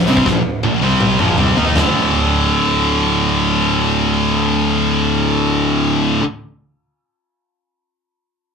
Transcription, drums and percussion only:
0.08 open hi-hat medium
0.17 kick medium
0.26 kick medium
0.26 snare medium
0.63 high tom medium
1.00 mid tom medium
1.19 mid tom medium
1.38 floor tom medium
1.57 floor tom medium
1.76 snare medium
1.76 floor tom medium

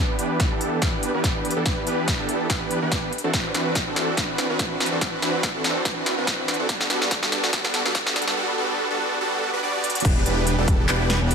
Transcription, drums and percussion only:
0.19 closed hi-hat medium
0.40 kick loud
0.40 snare medium
0.40 closed hi-hat medium
0.61 closed hi-hat medium
0.82 kick loud
0.82 snare medium
0.82 closed hi-hat medium
1.03 closed hi-hat medium
1.24 kick loud
1.24 snare medium
1.24 closed hi-hat medium
1.45 closed hi-hat soft
1.51 closed hi-hat medium
1.66 kick loud
1.66 snare medium
1.66 closed hi-hat medium
1.87 closed hi-hat medium
2.08 kick loud
2.08 snare medium
2.08 closed hi-hat medium
2.29 closed hi-hat medium
2.50 kick loud
2.50 snare medium
2.50 closed hi-hat medium
2.71 closed hi-hat medium
2.92 kick medium
2.92 snare medium
2.92 closed hi-hat medium
3.13 closed hi-hat soft
3.18 closed hi-hat medium
3.33 kick loud
3.33 snare medium
3.33 closed hi-hat medium
3.54 snare medium
3.54 closed hi-hat medium
3.75 kick loud
3.75 snare medium
3.75 closed hi-hat medium
3.96 snare medium
3.96 closed hi-hat medium
4.17 kick loud
4.17 snare medium
4.17 closed hi-hat medium
4.38 snare medium
4.38 closed hi-hat medium
4.59 kick medium
4.59 snare medium
4.59 closed hi-hat medium
4.80 snare medium
4.80 closed hi-hat soft
4.86 closed hi-hat medium
5.01 kick loud
5.01 snare medium
5.01 closed hi-hat medium
5.22 snare medium
5.22 closed hi-hat medium
5.43 kick loud
5.43 snare medium
5.43 closed hi-hat medium
5.64 snare medium
5.64 closed hi-hat medium
5.85 kick loud
5.85 snare medium
5.85 closed hi-hat medium
6.06 snare medium
6.06 closed hi-hat medium
6.27 kick loud
6.27 snare medium
6.27 closed hi-hat medium
6.48 snare medium
6.48 closed hi-hat soft
6.54 closed hi-hat medium
6.69 kick loud
6.69 snare medium
6.69 closed hi-hat medium
6.81 snare medium
6.90 snare medium
6.90 closed hi-hat medium
7.02 snare medium
7.11 kick loud
7.11 snare loud
7.11 closed hi-hat medium
7.23 snare medium
7.32 snare medium
7.32 closed hi-hat medium
7.44 snare medium
7.53 kick medium
7.53 snare loud
7.53 closed hi-hat medium
7.65 snare medium
7.74 snare loud
7.74 closed hi-hat medium
7.86 snare medium
7.95 kick loud
7.95 snare loud
7.95 closed hi-hat medium
8.07 snare medium
8.16 snare loud
8.16 closed hi-hat medium
8.22 closed hi-hat medium
8.28 snare medium
9.84 closed hi-hat medium
9.90 closed hi-hat medium
9.95 closed hi-hat medium
10.00 closed hi-hat medium
10.05 kick loud
10.05 closed hi-hat medium
10.05 crash loud
10.26 closed hi-hat medium
10.47 closed hi-hat medium
10.68 kick loud
10.68 closed hi-hat medium
10.89 clap loud
10.89 closed hi-hat medium
11.10 snare medium
11.10 closed hi-hat medium
11.31 closed hi-hat medium

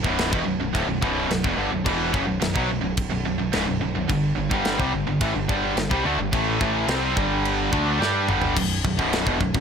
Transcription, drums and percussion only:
0.04 kick loud
0.19 snare loud
0.19 crash medium
0.33 kick loud
0.75 kick loud
0.75 crash medium
1.02 kick loud
1.31 snare loud
1.31 crash medium
1.44 kick loud
1.86 kick loud
1.86 crash medium
2.14 kick loud
2.42 snare loud
2.42 crash medium
2.56 kick loud
2.97 kick loud
2.97 crash medium
3.53 snare loud
3.53 crash medium
4.10 kick medium
4.10 crash medium
4.51 kick loud
4.65 snare loud
4.65 crash medium
4.80 kick loud
5.21 kick loud
5.21 crash medium
5.49 kick loud
5.77 snare loud
5.77 crash medium
5.91 kick loud
6.33 kick loud
6.33 crash medium
6.61 kick loud
6.88 snare loud
6.88 crash medium
7.17 kick loud
7.45 crash medium
7.73 kick loud
8.02 snare medium
8.29 mid tom loud
8.42 floor tom loud
8.57 kick loud
8.57 crash loud
8.57 crash medium
8.85 kick loud
8.99 kick medium
9.13 snare loud
9.13 crash medium
9.27 kick loud
9.41 kick medium
9.55 kick loud

